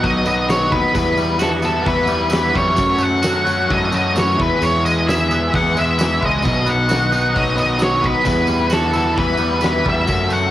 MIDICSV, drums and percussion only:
0, 0, Header, 1, 2, 480
1, 0, Start_track
1, 0, Tempo, 456969
1, 1000, Time_signature, 4, 2, 24, 8
1, 11037, End_track
2, 0, Start_track
2, 0, Title_t, "Drums"
2, 36, Note_on_c, 9, 46, 55
2, 40, Note_on_c, 9, 36, 104
2, 50, Note_on_c, 9, 54, 27
2, 141, Note_off_c, 9, 46, 0
2, 145, Note_off_c, 9, 36, 0
2, 155, Note_off_c, 9, 54, 0
2, 268, Note_on_c, 9, 54, 71
2, 373, Note_off_c, 9, 54, 0
2, 514, Note_on_c, 9, 46, 54
2, 523, Note_on_c, 9, 54, 80
2, 527, Note_on_c, 9, 38, 112
2, 619, Note_off_c, 9, 46, 0
2, 628, Note_off_c, 9, 54, 0
2, 632, Note_off_c, 9, 38, 0
2, 754, Note_on_c, 9, 54, 25
2, 758, Note_on_c, 9, 36, 85
2, 859, Note_off_c, 9, 54, 0
2, 864, Note_off_c, 9, 36, 0
2, 994, Note_on_c, 9, 54, 61
2, 998, Note_on_c, 9, 46, 59
2, 999, Note_on_c, 9, 36, 101
2, 1099, Note_off_c, 9, 54, 0
2, 1103, Note_off_c, 9, 46, 0
2, 1104, Note_off_c, 9, 36, 0
2, 1235, Note_on_c, 9, 54, 66
2, 1340, Note_off_c, 9, 54, 0
2, 1462, Note_on_c, 9, 54, 94
2, 1478, Note_on_c, 9, 46, 60
2, 1491, Note_on_c, 9, 38, 104
2, 1567, Note_off_c, 9, 54, 0
2, 1583, Note_off_c, 9, 46, 0
2, 1596, Note_off_c, 9, 38, 0
2, 1704, Note_on_c, 9, 54, 68
2, 1809, Note_off_c, 9, 54, 0
2, 1941, Note_on_c, 9, 54, 28
2, 1958, Note_on_c, 9, 46, 61
2, 1959, Note_on_c, 9, 36, 107
2, 2046, Note_off_c, 9, 54, 0
2, 2063, Note_off_c, 9, 46, 0
2, 2064, Note_off_c, 9, 36, 0
2, 2178, Note_on_c, 9, 54, 71
2, 2283, Note_off_c, 9, 54, 0
2, 2413, Note_on_c, 9, 54, 92
2, 2440, Note_on_c, 9, 46, 60
2, 2452, Note_on_c, 9, 38, 106
2, 2518, Note_off_c, 9, 54, 0
2, 2545, Note_off_c, 9, 46, 0
2, 2557, Note_off_c, 9, 38, 0
2, 2666, Note_on_c, 9, 54, 30
2, 2684, Note_on_c, 9, 36, 83
2, 2771, Note_off_c, 9, 54, 0
2, 2789, Note_off_c, 9, 36, 0
2, 2903, Note_on_c, 9, 54, 83
2, 2919, Note_on_c, 9, 46, 60
2, 2924, Note_on_c, 9, 36, 108
2, 3008, Note_off_c, 9, 54, 0
2, 3024, Note_off_c, 9, 46, 0
2, 3029, Note_off_c, 9, 36, 0
2, 3135, Note_on_c, 9, 54, 81
2, 3240, Note_off_c, 9, 54, 0
2, 3389, Note_on_c, 9, 54, 102
2, 3394, Note_on_c, 9, 46, 57
2, 3407, Note_on_c, 9, 38, 110
2, 3494, Note_off_c, 9, 54, 0
2, 3499, Note_off_c, 9, 46, 0
2, 3512, Note_off_c, 9, 38, 0
2, 3640, Note_on_c, 9, 54, 73
2, 3746, Note_off_c, 9, 54, 0
2, 3887, Note_on_c, 9, 46, 55
2, 3891, Note_on_c, 9, 36, 109
2, 3891, Note_on_c, 9, 54, 31
2, 3992, Note_off_c, 9, 46, 0
2, 3996, Note_off_c, 9, 36, 0
2, 3996, Note_off_c, 9, 54, 0
2, 4119, Note_on_c, 9, 54, 77
2, 4224, Note_off_c, 9, 54, 0
2, 4366, Note_on_c, 9, 54, 90
2, 4377, Note_on_c, 9, 46, 54
2, 4390, Note_on_c, 9, 38, 107
2, 4471, Note_off_c, 9, 54, 0
2, 4482, Note_off_c, 9, 46, 0
2, 4495, Note_off_c, 9, 38, 0
2, 4618, Note_on_c, 9, 36, 105
2, 4623, Note_on_c, 9, 54, 30
2, 4723, Note_off_c, 9, 36, 0
2, 4728, Note_off_c, 9, 54, 0
2, 4850, Note_on_c, 9, 54, 84
2, 4858, Note_on_c, 9, 46, 57
2, 4955, Note_off_c, 9, 54, 0
2, 4963, Note_off_c, 9, 46, 0
2, 5105, Note_on_c, 9, 54, 76
2, 5210, Note_off_c, 9, 54, 0
2, 5337, Note_on_c, 9, 46, 57
2, 5350, Note_on_c, 9, 38, 110
2, 5359, Note_on_c, 9, 54, 100
2, 5443, Note_off_c, 9, 46, 0
2, 5455, Note_off_c, 9, 38, 0
2, 5464, Note_off_c, 9, 54, 0
2, 5576, Note_on_c, 9, 54, 73
2, 5682, Note_off_c, 9, 54, 0
2, 5811, Note_on_c, 9, 46, 58
2, 5819, Note_on_c, 9, 36, 109
2, 5825, Note_on_c, 9, 54, 28
2, 5916, Note_off_c, 9, 46, 0
2, 5924, Note_off_c, 9, 36, 0
2, 5930, Note_off_c, 9, 54, 0
2, 6059, Note_on_c, 9, 54, 73
2, 6164, Note_off_c, 9, 54, 0
2, 6289, Note_on_c, 9, 54, 87
2, 6301, Note_on_c, 9, 46, 63
2, 6313, Note_on_c, 9, 38, 117
2, 6394, Note_off_c, 9, 54, 0
2, 6406, Note_off_c, 9, 46, 0
2, 6418, Note_off_c, 9, 38, 0
2, 6539, Note_on_c, 9, 36, 81
2, 6539, Note_on_c, 9, 54, 25
2, 6644, Note_off_c, 9, 36, 0
2, 6644, Note_off_c, 9, 54, 0
2, 6746, Note_on_c, 9, 54, 66
2, 6778, Note_on_c, 9, 49, 91
2, 6779, Note_on_c, 9, 36, 105
2, 6851, Note_off_c, 9, 54, 0
2, 6883, Note_off_c, 9, 49, 0
2, 6884, Note_off_c, 9, 36, 0
2, 6999, Note_on_c, 9, 54, 65
2, 7104, Note_off_c, 9, 54, 0
2, 7236, Note_on_c, 9, 54, 92
2, 7250, Note_on_c, 9, 46, 61
2, 7263, Note_on_c, 9, 38, 108
2, 7341, Note_off_c, 9, 54, 0
2, 7355, Note_off_c, 9, 46, 0
2, 7368, Note_off_c, 9, 38, 0
2, 7480, Note_on_c, 9, 54, 66
2, 7585, Note_off_c, 9, 54, 0
2, 7720, Note_on_c, 9, 54, 28
2, 7730, Note_on_c, 9, 46, 61
2, 7731, Note_on_c, 9, 36, 104
2, 7825, Note_off_c, 9, 54, 0
2, 7835, Note_off_c, 9, 46, 0
2, 7836, Note_off_c, 9, 36, 0
2, 7960, Note_on_c, 9, 54, 72
2, 8065, Note_off_c, 9, 54, 0
2, 8181, Note_on_c, 9, 54, 87
2, 8202, Note_on_c, 9, 46, 59
2, 8215, Note_on_c, 9, 38, 106
2, 8286, Note_off_c, 9, 54, 0
2, 8308, Note_off_c, 9, 46, 0
2, 8320, Note_off_c, 9, 38, 0
2, 8440, Note_on_c, 9, 54, 30
2, 8445, Note_on_c, 9, 36, 85
2, 8545, Note_off_c, 9, 54, 0
2, 8550, Note_off_c, 9, 36, 0
2, 8665, Note_on_c, 9, 54, 76
2, 8680, Note_on_c, 9, 36, 100
2, 8680, Note_on_c, 9, 46, 53
2, 8771, Note_off_c, 9, 54, 0
2, 8785, Note_off_c, 9, 36, 0
2, 8785, Note_off_c, 9, 46, 0
2, 8897, Note_on_c, 9, 54, 68
2, 9002, Note_off_c, 9, 54, 0
2, 9136, Note_on_c, 9, 54, 90
2, 9155, Note_on_c, 9, 46, 58
2, 9168, Note_on_c, 9, 38, 116
2, 9241, Note_off_c, 9, 54, 0
2, 9260, Note_off_c, 9, 46, 0
2, 9273, Note_off_c, 9, 38, 0
2, 9384, Note_on_c, 9, 54, 69
2, 9490, Note_off_c, 9, 54, 0
2, 9625, Note_on_c, 9, 54, 29
2, 9638, Note_on_c, 9, 46, 59
2, 9640, Note_on_c, 9, 36, 114
2, 9730, Note_off_c, 9, 54, 0
2, 9743, Note_off_c, 9, 46, 0
2, 9745, Note_off_c, 9, 36, 0
2, 9846, Note_on_c, 9, 54, 69
2, 9951, Note_off_c, 9, 54, 0
2, 10091, Note_on_c, 9, 54, 81
2, 10117, Note_on_c, 9, 46, 60
2, 10129, Note_on_c, 9, 38, 102
2, 10196, Note_off_c, 9, 54, 0
2, 10222, Note_off_c, 9, 46, 0
2, 10234, Note_off_c, 9, 38, 0
2, 10340, Note_on_c, 9, 54, 25
2, 10356, Note_on_c, 9, 36, 81
2, 10445, Note_off_c, 9, 54, 0
2, 10461, Note_off_c, 9, 36, 0
2, 10580, Note_on_c, 9, 54, 70
2, 10588, Note_on_c, 9, 46, 57
2, 10595, Note_on_c, 9, 36, 103
2, 10685, Note_off_c, 9, 54, 0
2, 10693, Note_off_c, 9, 46, 0
2, 10700, Note_off_c, 9, 36, 0
2, 10822, Note_on_c, 9, 54, 66
2, 10927, Note_off_c, 9, 54, 0
2, 11037, End_track
0, 0, End_of_file